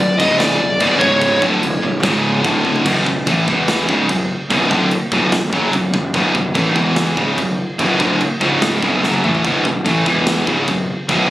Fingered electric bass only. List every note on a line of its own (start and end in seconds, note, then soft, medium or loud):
0.00 0.18 B0 medium
0.20 0.58 C#1 medium
0.60 0.79 B0 medium
0.81 1.00 B0 medium
1.01 1.39 C#1 loud
1.42 1.61 D1 loud
1.63 1.82 B0 medium
1.83 2.02 B0 medium
2.03 2.41 C#1 medium
2.45 2.83 D1 medium
2.86 3.05 B0 medium
3.06 3.25 B0 medium
3.27 3.46 A1 medium
3.48 3.86 E1 medium
3.89 4.08 C#1 medium
4.09 4.28 B0 medium
4.51 4.69 B0 medium
4.71 4.90 D1 loud
5.12 5.31 B0 medium
5.32 5.51 B0 medium
5.53 5.72 F#1 medium
5.73 5.92 B0 medium
5.94 6.13 B0 medium
6.14 6.33 B0 medium
6.35 6.54 B0 medium
6.55 6.75 A1 medium
6.76 7.14 E1 loud
7.17 7.36 C#1 loud
7.38 7.57 B0 medium
7.79 7.98 B0 medium
8.00 8.19 D1 medium
8.41 8.80 C#1 medium
8.83 9.02 B0 medium
9.03 9.22 F#1 medium
9.24 9.43 A1 medium
9.45 9.64 B0 medium
9.65 9.84 B0 medium
9.86 10.05 A1 medium
10.06 10.44 E1 loud
10.47 10.66 C#1 medium
10.68 10.87 B0 medium
11.09 11.28 B0 medium